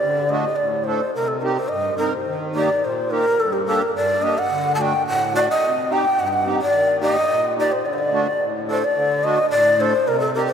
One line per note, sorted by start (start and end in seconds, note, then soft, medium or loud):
0.00 0.44 D3 medium
0.00 0.31 D5 medium
0.29 0.44 A3 medium
0.29 0.45 D4 medium
0.29 0.45 F#4 medium
0.29 0.57 D#5 medium
0.56 1.01 A2 medium
0.56 0.85 D5 medium
0.84 1.01 A3 medium
0.84 1.01 D4 medium
0.84 1.01 A4 medium
0.84 1.13 C5 medium
1.15 1.57 C3 medium
1.15 1.29 A#4 loud
1.28 1.39 A4 medium
1.40 1.57 C4 medium
1.40 1.57 D#4 medium
1.40 1.55 A#4 medium
1.40 1.43 C5 medium
1.44 1.57 G4 medium
1.56 1.70 C5 medium
1.68 2.12 G2 medium
1.68 1.97 D#5 medium
1.98 2.13 C4 medium
1.98 2.13 D#4 medium
1.98 2.13 A#4 medium
1.98 2.14 A#4 medium
2.11 2.35 C5 medium
2.27 2.69 D#3 medium
2.55 2.69 A#3 medium
2.55 2.69 D#4 medium
2.55 2.70 G4 medium
2.55 2.86 D5 medium
2.83 3.25 A#2 medium
2.83 3.12 C5 medium
3.10 3.25 A#3 medium
3.10 3.25 D#4 medium
3.10 3.25 G4 medium
3.10 3.41 A#4 loud
3.40 3.81 G2 medium
3.40 3.54 A4 medium
3.53 3.66 G4 medium
3.66 3.81 A#3 medium
3.66 3.81 D4 medium
3.66 3.82 G4 medium
3.66 3.83 A4 medium
3.82 3.95 A#4 medium
3.95 4.37 G2 medium
3.95 4.24 D5 medium
4.22 4.36 A#3 medium
4.22 4.37 D4 medium
4.22 4.37 G4 medium
4.22 4.40 D#5 loud
4.38 4.72 F#5 loud
4.50 4.92 D3 medium
4.75 4.92 A3 medium
4.75 4.93 D4 medium
4.75 4.83 A5 medium
4.79 4.93 F#4 medium
4.79 5.07 G5 loud
5.05 5.47 A2 medium
5.05 5.33 F#5 loud
5.33 5.48 A3 medium
5.33 5.48 D4 medium
5.33 5.49 F#4 medium
5.33 5.48 D5 medium
5.51 5.94 D#5 medium
5.63 6.04 C3 medium
5.90 6.04 C4 medium
5.90 6.05 D#4 medium
5.90 6.05 G4 medium
5.90 6.21 G5 loud
6.19 6.60 G2 medium
6.19 6.29 F#5 loud
6.27 6.34 G5 medium
6.33 6.47 F#5 loud
6.45 6.59 C4 medium
6.45 6.60 D#4 medium
6.45 6.60 G4 medium
6.62 7.00 D5 loud
6.72 7.15 D#3 medium
7.00 7.15 A#3 medium
7.00 7.15 D#4 medium
7.00 7.16 G4 medium
7.00 7.53 D#5 loud
7.30 7.71 A#2 medium
7.57 7.71 A#3 medium
7.57 7.72 D#4 medium
7.57 7.72 G4 medium
7.57 7.74 D5 medium
7.72 7.87 C5 medium
7.85 8.26 D3 medium
7.85 7.95 D5 medium
7.93 8.00 C5 medium
7.98 8.43 D5 medium
8.12 8.27 A3 medium
8.12 8.27 D4 medium
8.12 8.27 F#4 medium
8.41 8.82 A2 medium
8.67 8.82 A3 medium
8.67 8.83 D4 medium
8.67 8.83 A4 medium
8.67 8.86 C5 medium
8.84 9.25 D5 medium
8.96 9.37 D3 medium
9.24 9.38 A3 medium
9.24 9.38 D4 medium
9.24 9.39 F#4 medium
9.24 9.50 D#5 medium
9.51 9.93 A2 medium
9.51 9.82 D5 medium
9.79 9.93 A3 medium
9.79 9.93 D4 medium
9.79 9.94 A4 medium
9.79 10.09 C5 medium
10.07 10.48 C3 medium
10.07 10.19 A#4 medium
10.20 10.33 A4 medium
10.35 10.49 C4 medium
10.35 10.49 D#4 medium
10.35 10.49 G4 medium
10.35 10.46 A#4 medium
10.46 10.53 C5 medium